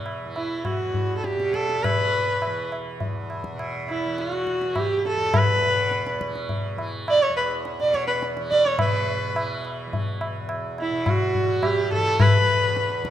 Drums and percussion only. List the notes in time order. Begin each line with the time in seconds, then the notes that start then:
0.06 tabla na
0.36 tabla na
0.65 tabla na, tabla ge
0.94 tabla ge
1.24 tabla te
1.40 tabla te
1.54 tabla ke
1.69 tabla te
1.84 tabla na, tabla ge
2.42 tabla na
2.72 tabla na
3.00 tabla tin, tabla ge
3.30 tabla na
3.44 tabla ke
3.59 tabla na
3.88 tabla na
4.18 tabla te
4.32 tabla te
4.47 tabla ke
4.61 tabla te
4.76 tabla na, tabla ge
5.05 tabla te
5.34 tabla na, tabla ge
5.91 tabla te
6.07 tabla te
6.21 tabla ke
6.36 tabla te
6.49 tabla tin, tabla ge
6.78 tabla na
7.08 tabla na
7.37 tabla na
7.65 tabla te
7.80 tabla te
7.94 tabla ke
8.08 tabla te
8.22 tabla te
8.37 tabla te
8.52 tabla ke
8.66 tabla te
8.79 tabla na, tabla ge
9.36 tabla na
9.65 tabla na
9.93 tabla tin, tabla ge
10.21 tabla na
10.49 tabla na
10.78 tabla na
11.06 tabla na, tabla ge
11.35 tabla ge
11.63 tabla na, tabla ge
11.92 tabla ge
12.20 tabla na, tabla ge
12.76 tabla te
12.90 tabla te
13.05 tabla ke